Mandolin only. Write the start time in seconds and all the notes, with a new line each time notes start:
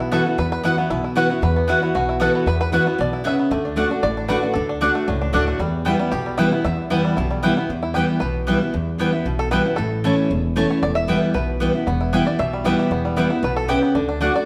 0.12 B3 E4 B4 F#5
0.63 B3 E4 B4 F#5
1.15 B3 E4 B4 F#5
1.68 B3 E4 B4 F#5
2.20 B3 E4 B4 F#5
2.72 B3 E4 B4 F#5
3.24 B3 E4 B4 F#5
3.76 A3 F#4 D5 F#5
4.28 A3 F#4 D5 F#5
4.81 A3 F#4 D5 F#5
5.33 A3 F#4 D5 F#5
5.85 B3 E4 B4 G5
6.38 B3 E4 B4 G5
6.90 B3 E4 B4 G5
7.43 B3 E4 B4 G5
7.95 B3 E4 B4 G5
8.47 B3 E4 B4 G5
8.99 B3 E4 B4 G5
9.51 B3 E4 B4 G5
10.04 A3 E4 C#5 A5
10.56 A3 E4 C#5 A5
11.08 B3 E4 B4 G5
11.60 B3 E4 B4 G5
12.13 B3 E4 B4 G5
12.65 B3 E4 B4 G5
13.17 B3 E4 B4 G5
13.68 B3 E4 B4 G5
14.21 A3 F#4 D5 F#5